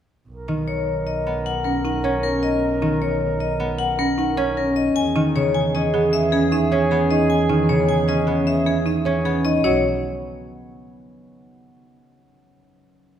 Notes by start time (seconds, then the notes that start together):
0.28 B1 A#4
0.48 D#3 D#4
0.68 C#5
1.07 D#5
1.27 B3
1.46 F#5
1.64 C#4 A#4
1.85 D#4 F#5
2.04 C#4 C#5
2.23 A#4
2.43 D#5
2.82 D#3 D#4
3.02 C#5
3.40 D#5
3.60 B3
3.79 F#5
3.99 C#4 A#4
4.18 D#4 F#5
4.37 C#4 C#5
4.57 A#4
4.76 D#5
4.96 E2 G#4 G#5
5.16 D#3 D#4
5.36 C#3 C#5
5.54 G#5
5.75 C#4 D#5
5.94 B3 G#4
6.13 E5
6.32 C#4 G#4
6.52 D#4 E5
6.72 C#4 C#5
6.91 B3 G#4
7.11 D#4 D#5
7.30 G#5
7.49 D#3 D#4
7.69 C#3 C#5
7.89 G#5
8.08 C#4 D#5
8.27 B3 G#4
8.47 E5
8.66 C#4 G#4
8.86 D#4 E5
9.05 C#4 C#5
9.25 B3 G#4
9.45 D#4 D#5
9.64 B1 F#3 F#4 C#5